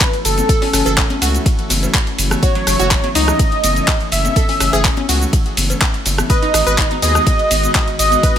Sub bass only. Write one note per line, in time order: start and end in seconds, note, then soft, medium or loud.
0.25 0.41 F#1 medium
0.73 0.82 F#1 loud
0.86 1.02 F#1 medium
1.22 1.38 C#2 medium
1.70 1.86 F#1 medium
2.18 2.35 F#1 loud
2.67 2.75 F#1 loud
2.79 2.95 F#1 medium
3.15 3.32 C#2 medium
3.64 3.80 F#1 loud
4.12 4.28 F#1 medium
4.60 4.69 F#1 loud
4.73 4.89 F#1 medium
5.09 5.25 C#2 medium
5.57 5.74 F#1 loud
6.06 6.22 F#1 medium
6.54 6.62 G#1 loud
6.67 6.82 G#1 medium
7.02 7.19 D#2 medium
7.51 7.67 G#1 loud
7.99 8.16 G#1 medium